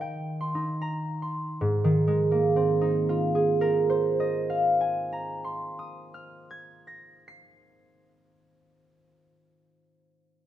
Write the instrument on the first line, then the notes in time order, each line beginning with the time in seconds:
harp
Already playing: D#3 D#4 D#5 C6
0.01 G5
0.41 C6
0.55 D#4
0.81 A#5
1.22 C6
1.61 G#2
1.84 D#3
2.07 G#3
2.31 A#3
2.56 C4
2.81 D#4
3.09 F4
3.35 G#4
3.61 A#4
3.90 C5
4.20 D#5
4.50 F5
4.81 G#5
5.13 A#5
5.44 C6
5.79 D#6
6.14 F6
6.51 G#6
6.87 A#6
7.28 C7